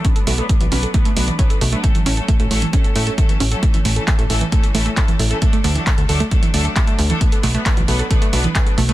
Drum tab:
HH |xxoxxxoxxxoxxxox|xxoxxxoxxxoxxxox|xxoxxxoxxxoxxxox|xxoxxxoxxxoxxxox|
CP |----------------|----------------|----x-------x---|----x-------x---|
BD |o---o---o---o---|o---o---o---o---|o---o---o---o---|o---o---o---o---|

HH |xxoxxxoxxxoxxxox|
CP |----x-------x---|
BD |o---o---o---o---|